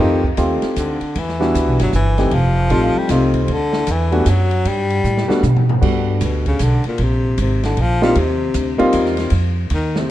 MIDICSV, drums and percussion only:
0, 0, Header, 1, 2, 480
1, 0, Start_track
1, 0, Tempo, 389105
1, 1426, Time_signature, 3, 2, 24, 8
1, 12469, End_track
2, 0, Start_track
2, 0, Title_t, "Drums"
2, 297, Note_on_c, 9, 36, 50
2, 421, Note_off_c, 9, 36, 0
2, 458, Note_on_c, 9, 44, 52
2, 458, Note_on_c, 9, 51, 60
2, 466, Note_on_c, 9, 36, 20
2, 581, Note_off_c, 9, 44, 0
2, 581, Note_off_c, 9, 51, 0
2, 589, Note_off_c, 9, 36, 0
2, 765, Note_on_c, 9, 51, 47
2, 768, Note_on_c, 9, 38, 34
2, 888, Note_off_c, 9, 51, 0
2, 892, Note_off_c, 9, 38, 0
2, 941, Note_on_c, 9, 44, 60
2, 941, Note_on_c, 9, 51, 62
2, 947, Note_on_c, 9, 36, 20
2, 1064, Note_off_c, 9, 44, 0
2, 1064, Note_off_c, 9, 51, 0
2, 1070, Note_off_c, 9, 36, 0
2, 1244, Note_on_c, 9, 51, 38
2, 1367, Note_off_c, 9, 51, 0
2, 1424, Note_on_c, 9, 51, 60
2, 1427, Note_on_c, 9, 36, 22
2, 1548, Note_off_c, 9, 51, 0
2, 1550, Note_off_c, 9, 36, 0
2, 1590, Note_on_c, 9, 38, 28
2, 1714, Note_off_c, 9, 38, 0
2, 1748, Note_on_c, 9, 38, 41
2, 1871, Note_off_c, 9, 38, 0
2, 1910, Note_on_c, 9, 36, 17
2, 1915, Note_on_c, 9, 44, 54
2, 1915, Note_on_c, 9, 51, 62
2, 2033, Note_off_c, 9, 36, 0
2, 2039, Note_off_c, 9, 44, 0
2, 2039, Note_off_c, 9, 51, 0
2, 2214, Note_on_c, 9, 51, 66
2, 2218, Note_on_c, 9, 38, 45
2, 2337, Note_off_c, 9, 51, 0
2, 2341, Note_off_c, 9, 38, 0
2, 2375, Note_on_c, 9, 44, 62
2, 2385, Note_on_c, 9, 36, 18
2, 2499, Note_off_c, 9, 44, 0
2, 2509, Note_off_c, 9, 36, 0
2, 2686, Note_on_c, 9, 51, 44
2, 2690, Note_on_c, 9, 38, 39
2, 2810, Note_off_c, 9, 51, 0
2, 2813, Note_off_c, 9, 38, 0
2, 2852, Note_on_c, 9, 51, 57
2, 2861, Note_on_c, 9, 36, 25
2, 2976, Note_off_c, 9, 51, 0
2, 2984, Note_off_c, 9, 36, 0
2, 3329, Note_on_c, 9, 51, 55
2, 3338, Note_on_c, 9, 36, 21
2, 3452, Note_off_c, 9, 51, 0
2, 3462, Note_off_c, 9, 36, 0
2, 3809, Note_on_c, 9, 44, 58
2, 3809, Note_on_c, 9, 51, 68
2, 3813, Note_on_c, 9, 38, 39
2, 3817, Note_on_c, 9, 36, 18
2, 3933, Note_off_c, 9, 44, 0
2, 3933, Note_off_c, 9, 51, 0
2, 3937, Note_off_c, 9, 38, 0
2, 3940, Note_off_c, 9, 36, 0
2, 4116, Note_on_c, 9, 51, 44
2, 4125, Note_on_c, 9, 36, 52
2, 4240, Note_off_c, 9, 51, 0
2, 4248, Note_off_c, 9, 36, 0
2, 4292, Note_on_c, 9, 51, 57
2, 4298, Note_on_c, 9, 36, 20
2, 4415, Note_off_c, 9, 51, 0
2, 4421, Note_off_c, 9, 36, 0
2, 4601, Note_on_c, 9, 38, 56
2, 4725, Note_off_c, 9, 38, 0
2, 4770, Note_on_c, 9, 44, 60
2, 4770, Note_on_c, 9, 51, 67
2, 4778, Note_on_c, 9, 36, 21
2, 4894, Note_off_c, 9, 44, 0
2, 4894, Note_off_c, 9, 51, 0
2, 4901, Note_off_c, 9, 36, 0
2, 5085, Note_on_c, 9, 51, 41
2, 5208, Note_off_c, 9, 51, 0
2, 5253, Note_on_c, 9, 44, 59
2, 5253, Note_on_c, 9, 51, 70
2, 5259, Note_on_c, 9, 36, 24
2, 5376, Note_off_c, 9, 44, 0
2, 5376, Note_off_c, 9, 51, 0
2, 5382, Note_off_c, 9, 36, 0
2, 5562, Note_on_c, 9, 51, 43
2, 5685, Note_off_c, 9, 51, 0
2, 5740, Note_on_c, 9, 51, 66
2, 5741, Note_on_c, 9, 36, 19
2, 5864, Note_off_c, 9, 36, 0
2, 5864, Note_off_c, 9, 51, 0
2, 6048, Note_on_c, 9, 51, 44
2, 6171, Note_off_c, 9, 51, 0
2, 6225, Note_on_c, 9, 44, 51
2, 6348, Note_off_c, 9, 44, 0
2, 6384, Note_on_c, 9, 38, 50
2, 6507, Note_off_c, 9, 38, 0
2, 6542, Note_on_c, 9, 38, 66
2, 6665, Note_off_c, 9, 38, 0
2, 6701, Note_on_c, 9, 44, 58
2, 6705, Note_on_c, 9, 43, 64
2, 6825, Note_off_c, 9, 44, 0
2, 6828, Note_off_c, 9, 43, 0
2, 6866, Note_on_c, 9, 43, 73
2, 6989, Note_off_c, 9, 43, 0
2, 7024, Note_on_c, 9, 43, 81
2, 7147, Note_off_c, 9, 43, 0
2, 7183, Note_on_c, 9, 36, 74
2, 7184, Note_on_c, 9, 49, 74
2, 7307, Note_off_c, 9, 36, 0
2, 7308, Note_off_c, 9, 49, 0
2, 7656, Note_on_c, 9, 44, 54
2, 7656, Note_on_c, 9, 51, 67
2, 7662, Note_on_c, 9, 36, 20
2, 7780, Note_off_c, 9, 44, 0
2, 7780, Note_off_c, 9, 51, 0
2, 7785, Note_off_c, 9, 36, 0
2, 7966, Note_on_c, 9, 51, 45
2, 7970, Note_on_c, 9, 36, 47
2, 8090, Note_off_c, 9, 51, 0
2, 8093, Note_off_c, 9, 36, 0
2, 8132, Note_on_c, 9, 44, 63
2, 8132, Note_on_c, 9, 51, 62
2, 8139, Note_on_c, 9, 36, 23
2, 8255, Note_off_c, 9, 44, 0
2, 8255, Note_off_c, 9, 51, 0
2, 8262, Note_off_c, 9, 36, 0
2, 8436, Note_on_c, 9, 51, 43
2, 8559, Note_off_c, 9, 51, 0
2, 8610, Note_on_c, 9, 51, 61
2, 8619, Note_on_c, 9, 36, 22
2, 8734, Note_off_c, 9, 51, 0
2, 8742, Note_off_c, 9, 36, 0
2, 9099, Note_on_c, 9, 44, 49
2, 9099, Note_on_c, 9, 51, 71
2, 9103, Note_on_c, 9, 36, 22
2, 9223, Note_off_c, 9, 44, 0
2, 9223, Note_off_c, 9, 51, 0
2, 9226, Note_off_c, 9, 36, 0
2, 9417, Note_on_c, 9, 51, 45
2, 9421, Note_on_c, 9, 38, 49
2, 9540, Note_off_c, 9, 51, 0
2, 9544, Note_off_c, 9, 38, 0
2, 9583, Note_on_c, 9, 51, 55
2, 9585, Note_on_c, 9, 36, 19
2, 9706, Note_off_c, 9, 51, 0
2, 9708, Note_off_c, 9, 36, 0
2, 9895, Note_on_c, 9, 38, 53
2, 10019, Note_off_c, 9, 38, 0
2, 10058, Note_on_c, 9, 51, 65
2, 10064, Note_on_c, 9, 36, 26
2, 10182, Note_off_c, 9, 51, 0
2, 10188, Note_off_c, 9, 36, 0
2, 10536, Note_on_c, 9, 44, 60
2, 10536, Note_on_c, 9, 51, 64
2, 10544, Note_on_c, 9, 36, 26
2, 10659, Note_off_c, 9, 44, 0
2, 10659, Note_off_c, 9, 51, 0
2, 10668, Note_off_c, 9, 36, 0
2, 10848, Note_on_c, 9, 51, 49
2, 10971, Note_off_c, 9, 51, 0
2, 11011, Note_on_c, 9, 44, 55
2, 11011, Note_on_c, 9, 51, 68
2, 11022, Note_on_c, 9, 36, 18
2, 11135, Note_off_c, 9, 44, 0
2, 11135, Note_off_c, 9, 51, 0
2, 11145, Note_off_c, 9, 36, 0
2, 11170, Note_on_c, 9, 38, 31
2, 11293, Note_off_c, 9, 38, 0
2, 11311, Note_on_c, 9, 51, 49
2, 11326, Note_on_c, 9, 38, 44
2, 11434, Note_off_c, 9, 51, 0
2, 11450, Note_off_c, 9, 38, 0
2, 11474, Note_on_c, 9, 51, 69
2, 11493, Note_on_c, 9, 36, 20
2, 11597, Note_off_c, 9, 51, 0
2, 11617, Note_off_c, 9, 36, 0
2, 11966, Note_on_c, 9, 51, 62
2, 11975, Note_on_c, 9, 36, 21
2, 12089, Note_off_c, 9, 51, 0
2, 12099, Note_off_c, 9, 36, 0
2, 12284, Note_on_c, 9, 38, 66
2, 12408, Note_off_c, 9, 38, 0
2, 12469, End_track
0, 0, End_of_file